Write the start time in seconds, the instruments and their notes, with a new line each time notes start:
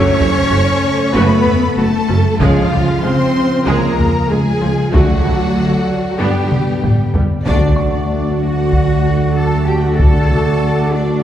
Already playing: viola section F#3 A3, french horn section A3 C#4, analog synth pad A3 A4, cello section C#4, violin section C#5 C#6, grand piano G5 E6 G6
0.19 tuba F#1, double bass section F#1, viola section G3 E4, taiko low
0.51 double bass section F#1, tuba F#1, viola section A3 F#4
1.14 double bass section F#1, tuba F#1, viola section A3 F#4, french horn section A3 C#4, cello section B3, violin section B4 B5
1.46 taiko low
1.77 tuba F#1, double bass section F#1, cello section A3, viola section A3 F#4, violin section A4 A5
2.08 double bass section F#1, tuba F#1, viola section F#3 C#4
2.40 double bass section C#2, tuba C#2, analog synth pad C#3 F3 F4, cello section F3, viola section G#3 G#4, french horn section G#3 C#4, violin section F4 F5, taiko
2.72 double bass section C#2, tuba C#2, viola section G3 G4, taiko low
3.03 double bass section C#2, tuba C#2, viola section G#3 G#4, cello section C4, violin section C5 C6, grand piano F6
3.66 double bass section C#2, tuba C#2, viola section G#3 G#4, french horn section G#3 C#4, cello section A#3, violin section A#4 A#5
3.99 taiko low
4.29 tuba C#2, double bass section C#2, viola section G#3 G#4, cello section G#3, violin section G#4 G#5
4.61 tuba C#2, double bass section C#2, viola section F3 F4
4.92 double bass section D2, tuba D2, cello section F#3, analog synth pad F#3 A3 A4 D5, viola section A3 F#4, french horn section A3 D4, violin section F#4 F#5, taiko
5.24 double bass section D2, tuba D2, viola section F#3 E4, taiko low
5.55 double bass section D2, tuba D2, viola section A3 F#4
6.19 tuba G1, double bass section G2, analog synth pad D3 B3 G4, cello section G3, viola section B3 D4, french horn section B3 D4, violin section G4 G5
6.52 taiko mid
6.82 tuba G1, double bass section G2, viola section B3 D4, taiko low-mid
7.14 tuba G1, double bass section G2, viola section G3 B3, taiko low
7.45 double bass section D2, tuba D2, analog synth pad D3 A3 F#4 D5, french horn section A3 F#4, cello section D4, viola section D4 F#4, violin section D5 A5, taiko
7.76 grand piano C#6, taiko mid
8.40 cello section F#4, violin section F#5
8.72 taiko
9.35 cello section A4, violin section A5
9.65 cello section G4, violin section G5, grand piano A5
9.82 cello section F#4, violin section F#5
9.98 cello section A4, violin section A5, taiko
10.31 taiko mid
10.92 cello section D4, violin section D5